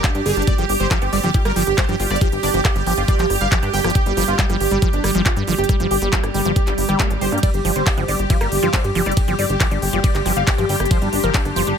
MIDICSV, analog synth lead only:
0, 0, Header, 1, 2, 480
1, 0, Start_track
1, 0, Tempo, 434783
1, 523, Time_signature, 4, 2, 24, 8
1, 13006, End_track
2, 0, Start_track
2, 0, Title_t, "Analog synth lead"
2, 0, Program_c, 0, 81
2, 44, Note_on_c, 0, 62, 65
2, 109, Note_off_c, 0, 62, 0
2, 164, Note_on_c, 0, 62, 65
2, 229, Note_off_c, 0, 62, 0
2, 284, Note_on_c, 0, 68, 91
2, 349, Note_off_c, 0, 68, 0
2, 404, Note_on_c, 0, 62, 65
2, 469, Note_off_c, 0, 62, 0
2, 524, Note_on_c, 0, 74, 102
2, 589, Note_off_c, 0, 74, 0
2, 644, Note_on_c, 0, 67, 66
2, 709, Note_off_c, 0, 67, 0
2, 764, Note_on_c, 0, 67, 66
2, 829, Note_off_c, 0, 67, 0
2, 884, Note_on_c, 0, 72, 96
2, 949, Note_off_c, 0, 72, 0
2, 1004, Note_on_c, 0, 67, 64
2, 1069, Note_off_c, 0, 67, 0
2, 1124, Note_on_c, 0, 67, 65
2, 1189, Note_off_c, 0, 67, 0
2, 1244, Note_on_c, 0, 74, 98
2, 1309, Note_off_c, 0, 74, 0
2, 1364, Note_on_c, 0, 67, 64
2, 1429, Note_off_c, 0, 67, 0
2, 1484, Note_on_c, 0, 67, 68
2, 1549, Note_off_c, 0, 67, 0
2, 1604, Note_on_c, 0, 70, 97
2, 1669, Note_off_c, 0, 70, 0
2, 1723, Note_on_c, 0, 67, 65
2, 1789, Note_off_c, 0, 67, 0
2, 1844, Note_on_c, 0, 67, 63
2, 1909, Note_off_c, 0, 67, 0
2, 1964, Note_on_c, 0, 72, 95
2, 2029, Note_off_c, 0, 72, 0
2, 2084, Note_on_c, 0, 67, 65
2, 2149, Note_off_c, 0, 67, 0
2, 2204, Note_on_c, 0, 67, 64
2, 2269, Note_off_c, 0, 67, 0
2, 2324, Note_on_c, 0, 74, 95
2, 2389, Note_off_c, 0, 74, 0
2, 2443, Note_on_c, 0, 67, 66
2, 2509, Note_off_c, 0, 67, 0
2, 2564, Note_on_c, 0, 67, 65
2, 2629, Note_off_c, 0, 67, 0
2, 2684, Note_on_c, 0, 74, 93
2, 2749, Note_off_c, 0, 74, 0
2, 2803, Note_on_c, 0, 67, 67
2, 2869, Note_off_c, 0, 67, 0
2, 2924, Note_on_c, 0, 67, 65
2, 2989, Note_off_c, 0, 67, 0
2, 3164, Note_on_c, 0, 67, 65
2, 3229, Note_off_c, 0, 67, 0
2, 3284, Note_on_c, 0, 67, 65
2, 3349, Note_off_c, 0, 67, 0
2, 3404, Note_on_c, 0, 74, 97
2, 3469, Note_off_c, 0, 74, 0
2, 3524, Note_on_c, 0, 67, 67
2, 3589, Note_off_c, 0, 67, 0
2, 3644, Note_on_c, 0, 67, 66
2, 3709, Note_off_c, 0, 67, 0
2, 3763, Note_on_c, 0, 77, 93
2, 3829, Note_off_c, 0, 77, 0
2, 3884, Note_on_c, 0, 67, 66
2, 3949, Note_off_c, 0, 67, 0
2, 4004, Note_on_c, 0, 67, 65
2, 4069, Note_off_c, 0, 67, 0
2, 4123, Note_on_c, 0, 79, 90
2, 4189, Note_off_c, 0, 79, 0
2, 4244, Note_on_c, 0, 67, 67
2, 4309, Note_off_c, 0, 67, 0
2, 4364, Note_on_c, 0, 67, 103
2, 4429, Note_off_c, 0, 67, 0
2, 4484, Note_on_c, 0, 55, 63
2, 4549, Note_off_c, 0, 55, 0
2, 4603, Note_on_c, 0, 55, 64
2, 4669, Note_off_c, 0, 55, 0
2, 4724, Note_on_c, 0, 65, 99
2, 4789, Note_off_c, 0, 65, 0
2, 4844, Note_on_c, 0, 55, 65
2, 4909, Note_off_c, 0, 55, 0
2, 4964, Note_on_c, 0, 55, 64
2, 5029, Note_off_c, 0, 55, 0
2, 5084, Note_on_c, 0, 67, 97
2, 5149, Note_off_c, 0, 67, 0
2, 5204, Note_on_c, 0, 55, 64
2, 5269, Note_off_c, 0, 55, 0
2, 5323, Note_on_c, 0, 55, 67
2, 5389, Note_off_c, 0, 55, 0
2, 5444, Note_on_c, 0, 62, 99
2, 5509, Note_off_c, 0, 62, 0
2, 5564, Note_on_c, 0, 55, 65
2, 5629, Note_off_c, 0, 55, 0
2, 5683, Note_on_c, 0, 55, 64
2, 5749, Note_off_c, 0, 55, 0
2, 5803, Note_on_c, 0, 65, 95
2, 5869, Note_off_c, 0, 65, 0
2, 5923, Note_on_c, 0, 55, 63
2, 5989, Note_off_c, 0, 55, 0
2, 6043, Note_on_c, 0, 55, 63
2, 6109, Note_off_c, 0, 55, 0
2, 6164, Note_on_c, 0, 67, 94
2, 6229, Note_off_c, 0, 67, 0
2, 6284, Note_on_c, 0, 55, 66
2, 6349, Note_off_c, 0, 55, 0
2, 6404, Note_on_c, 0, 55, 64
2, 6469, Note_off_c, 0, 55, 0
2, 6524, Note_on_c, 0, 67, 97
2, 6589, Note_off_c, 0, 67, 0
2, 6644, Note_on_c, 0, 55, 65
2, 6709, Note_off_c, 0, 55, 0
2, 6764, Note_on_c, 0, 55, 65
2, 6829, Note_off_c, 0, 55, 0
2, 7003, Note_on_c, 0, 55, 66
2, 7069, Note_off_c, 0, 55, 0
2, 7123, Note_on_c, 0, 55, 66
2, 7189, Note_off_c, 0, 55, 0
2, 7244, Note_on_c, 0, 67, 99
2, 7309, Note_off_c, 0, 67, 0
2, 7363, Note_on_c, 0, 55, 68
2, 7429, Note_off_c, 0, 55, 0
2, 7483, Note_on_c, 0, 55, 65
2, 7549, Note_off_c, 0, 55, 0
2, 7603, Note_on_c, 0, 67, 93
2, 7669, Note_off_c, 0, 67, 0
2, 7723, Note_on_c, 0, 55, 66
2, 7789, Note_off_c, 0, 55, 0
2, 7843, Note_on_c, 0, 55, 65
2, 7909, Note_off_c, 0, 55, 0
2, 7963, Note_on_c, 0, 72, 90
2, 8029, Note_off_c, 0, 72, 0
2, 8083, Note_on_c, 0, 55, 66
2, 8149, Note_off_c, 0, 55, 0
2, 8203, Note_on_c, 0, 74, 101
2, 8269, Note_off_c, 0, 74, 0
2, 8323, Note_on_c, 0, 67, 64
2, 8389, Note_off_c, 0, 67, 0
2, 8443, Note_on_c, 0, 67, 65
2, 8509, Note_off_c, 0, 67, 0
2, 8563, Note_on_c, 0, 72, 98
2, 8629, Note_off_c, 0, 72, 0
2, 8684, Note_on_c, 0, 67, 63
2, 8749, Note_off_c, 0, 67, 0
2, 8803, Note_on_c, 0, 67, 65
2, 8869, Note_off_c, 0, 67, 0
2, 8924, Note_on_c, 0, 74, 96
2, 8989, Note_off_c, 0, 74, 0
2, 9043, Note_on_c, 0, 67, 64
2, 9109, Note_off_c, 0, 67, 0
2, 9164, Note_on_c, 0, 67, 65
2, 9229, Note_off_c, 0, 67, 0
2, 9283, Note_on_c, 0, 70, 97
2, 9349, Note_off_c, 0, 70, 0
2, 9403, Note_on_c, 0, 67, 68
2, 9469, Note_off_c, 0, 67, 0
2, 9523, Note_on_c, 0, 67, 64
2, 9589, Note_off_c, 0, 67, 0
2, 9643, Note_on_c, 0, 72, 92
2, 9709, Note_off_c, 0, 72, 0
2, 9763, Note_on_c, 0, 67, 66
2, 9829, Note_off_c, 0, 67, 0
2, 9883, Note_on_c, 0, 67, 64
2, 9949, Note_off_c, 0, 67, 0
2, 10003, Note_on_c, 0, 74, 96
2, 10069, Note_off_c, 0, 74, 0
2, 10123, Note_on_c, 0, 67, 64
2, 10189, Note_off_c, 0, 67, 0
2, 10244, Note_on_c, 0, 67, 65
2, 10309, Note_off_c, 0, 67, 0
2, 10364, Note_on_c, 0, 74, 93
2, 10429, Note_off_c, 0, 74, 0
2, 10484, Note_on_c, 0, 67, 69
2, 10549, Note_off_c, 0, 67, 0
2, 10604, Note_on_c, 0, 67, 64
2, 10669, Note_off_c, 0, 67, 0
2, 10843, Note_on_c, 0, 67, 66
2, 10909, Note_off_c, 0, 67, 0
2, 10964, Note_on_c, 0, 67, 65
2, 11029, Note_off_c, 0, 67, 0
2, 11083, Note_on_c, 0, 74, 97
2, 11149, Note_off_c, 0, 74, 0
2, 11204, Note_on_c, 0, 67, 67
2, 11269, Note_off_c, 0, 67, 0
2, 11323, Note_on_c, 0, 67, 67
2, 11389, Note_off_c, 0, 67, 0
2, 11443, Note_on_c, 0, 77, 93
2, 11509, Note_off_c, 0, 77, 0
2, 11563, Note_on_c, 0, 67, 65
2, 11629, Note_off_c, 0, 67, 0
2, 11683, Note_on_c, 0, 67, 65
2, 11749, Note_off_c, 0, 67, 0
2, 11803, Note_on_c, 0, 79, 88
2, 11869, Note_off_c, 0, 79, 0
2, 11923, Note_on_c, 0, 67, 64
2, 11989, Note_off_c, 0, 67, 0
2, 12043, Note_on_c, 0, 72, 101
2, 12109, Note_off_c, 0, 72, 0
2, 12163, Note_on_c, 0, 62, 64
2, 12229, Note_off_c, 0, 62, 0
2, 12283, Note_on_c, 0, 62, 66
2, 12349, Note_off_c, 0, 62, 0
2, 12403, Note_on_c, 0, 70, 97
2, 12469, Note_off_c, 0, 70, 0
2, 12523, Note_on_c, 0, 62, 65
2, 12589, Note_off_c, 0, 62, 0
2, 12643, Note_on_c, 0, 62, 64
2, 12709, Note_off_c, 0, 62, 0
2, 12763, Note_on_c, 0, 72, 93
2, 12829, Note_off_c, 0, 72, 0
2, 12883, Note_on_c, 0, 62, 65
2, 12949, Note_off_c, 0, 62, 0
2, 13006, End_track
0, 0, End_of_file